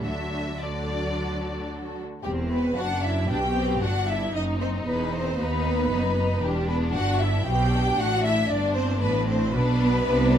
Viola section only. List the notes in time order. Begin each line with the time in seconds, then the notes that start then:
0.05 F#3 D4
0.60 F#3 D4
2.25 G3
2.51 B3
2.78 F#4
3.05 E4
3.30 G4
3.83 F#4
4.09 E4
4.34 D#4
4.61 C4
4.86 B3
5.12 C4
5.39 B3
6.42 G3
6.68 B3
6.95 F#4
7.21 E4
7.47 G4
7.99 F#4
8.25 E4
8.52 D4
8.77 C4
9.03 B3
9.29 C4
9.55 B3